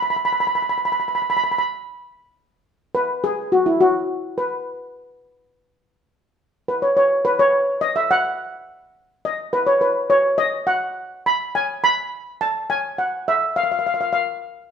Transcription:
steel pan
0.02 B5
0.10 B5
0.16 B5
0.25 B5
0.33 B5
0.40 B5
0.47 B5
0.55 B5
0.62 B5
0.69 B5
0.78 B5
0.85 B5
0.92 B5
1.00 B5
1.08 B5
1.15 B5
1.22 B5
1.30 B5
1.37 B5
1.44 B5
1.52 B5
1.58 B5
2.95 B4
3.24 G#4
3.52 F#4
3.66 E4
3.81 F#4
4.38 B4
6.68 B4
6.82 C#5
6.97 C#5
7.25 B4
7.39 C#5
7.81 D#5
7.96 E5
8.11 F#5
9.25 D#5
9.53 B4
9.67 C#5
9.81 B4
10.10 C#5
10.38 D#5
10.67 F#5
11.26 B5
11.55 G#5
11.84 B5
12.41 A5
12.70 G#5
12.98 F#5
13.28 E5
13.56 F5
13.64 F5
13.72 F5
13.79 F5
13.86 F5
13.94 F5
14.01 F5
14.13 F5

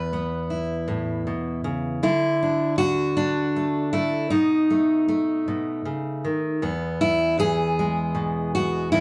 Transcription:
steel-string acoustic guitar
Already playing: E2 B3 B4
0.13 B3
0.50 E4
0.88 A2
1.27 B2
1.64 C#3
2.03 D3 E4
2.43 D4
2.78 F#4
3.17 D4
3.56 A3
3.93 A3 E4
4.30 B2 D#4
4.70 A3
5.08 A3
5.48 B2
5.85 C#3
6.25 D#3
6.62 E2 B3
7.01 E4
7.39 E3 G#4
7.79 G#3
8.15 B2
8.55 F#4
8.92 E2 E4

